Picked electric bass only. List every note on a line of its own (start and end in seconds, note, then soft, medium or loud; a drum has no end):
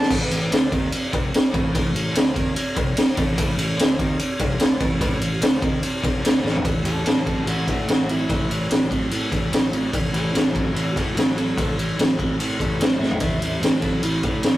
0.11 0.29 A1 medium
0.30 0.49 A1 medium
0.51 0.70 D2 medium
0.71 0.90 D#2 medium
0.92 muted picked electric bass stroke soft
1.13 1.32 C2 medium
1.33 muted picked electric bass stroke soft
1.53 1.72 A1 loud
1.75 1.93 A1 medium
1.94 2.13 A1 medium
2.14 2.33 D2 medium
2.36 2.54 D#2 medium
2.56 muted picked electric bass stroke soft
2.76 2.95 C2 medium
2.96 muted picked electric bass stroke soft
3.17 3.36 A1 loud
3.38 3.56 A1 medium
3.57 3.76 A1 medium
3.78 3.97 D2 medium
3.99 4.18 D#2 loud
4.19 muted picked electric bass stroke soft
4.40 4.58 C2 medium
4.59 4.79 D2 medium
4.80 4.99 A1 loud
5.01 5.20 A1 medium
5.21 5.40 A1 medium
5.42 5.61 D2 medium
5.62 5.81 D#2 medium
5.83 muted picked electric bass stroke soft
6.03 6.23 C2 medium
6.25 6.43 D2 medium
6.44 6.63 A1 loud
6.64 6.83 A1 medium
6.84 7.03 A1 medium
7.05 7.42 A1 medium
7.45 7.64 A1 medium
7.68 7.86 A2 medium
7.87 8.24 A1 medium
8.29 8.47 A1 medium
8.50 8.68 A1 medium
8.70 8.88 A1 medium
8.91 9.09 A1 medium
9.11 9.29 A2 medium
9.32 9.50 A1 medium
9.52 9.70 A1 medium
9.72 9.90 A1 medium
9.93 10.11 A1 medium
10.13 10.31 A1 medium
10.33 10.70 A1 medium
10.74 10.92 A1 medium
10.96 11.14 A2 medium
11.16 11.52 A1 medium
11.57 11.75 A1 medium
11.77 11.95 A1 medium
11.98 12.16 A1 medium
12.19 12.37 A1 medium
12.39 12.57 A2 medium
12.60 12.78 A1 medium
12.79 12.98 A1 medium
12.99 13.18 A1 medium
13.20 13.39 A1 medium
13.40 13.59 A1 medium
13.60 13.98 A1 medium
14.02 14.21 A1 medium
14.24 14.42 A2 medium
14.45 14.57 A1 medium